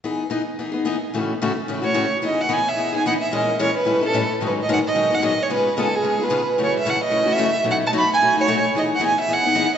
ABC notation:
X:1
M:4/4
L:1/8
Q:"Swing" 1/4=221
K:E
V:1 name="Violin"
z8 | z4 z c2 z | d f g e2 g f e | d2 c B2 A2 z |
B d f d2 f d c | B2 A G2 B2 z | c e f d2 e2 z | f a b g2 c2 z |
d f g e f3 z |]
V:2 name="Steel-string acoustic guitar"
[E,B,DG] z [E,B,DG] z [E,B,DG] [B,DG] [E,B,DG] z | [A,,C,E,A,CF] z [A,,C,E,A,CF] z [A,,C,E,A,CF] [E,A,CF] [A,,C,E,A,CF] z | [E,B,DG] z [E,B,DG] z [E,B,DG] [B,DG] [E,B,DG] z | [^A,,E,G,CG^A] z [A,,E,G,CGA] z [=A,,E,=G,CE=A] [G,CEA] [A,,E,G,CEA] z |
[G,,D,F,B,DG] z [G,,D,F,B,DG] z [G,,D,F,B,DG] [F,B,DG] [G,,D,F,B,DG] z | [C,G,B,^EG] z [C,G,B,EG] z [C,G,B,EG] [B,EG] [C,G,B,EG] z | [F,,C,E,A,CF] z [F,,C,E,A,CF] z [F,,C,E,A,CF] [E,A,CF] [F,,C,E,A,CF] z | [B,,F,A,DF] z [B,,F,A,DF] z [B,,F,A,DF] [A,DF] [B,,F,A,DF] z |
[E,B,DG] z [E,B,DG] z [E,B,DG] [B,DG] [E,B,DG] z |]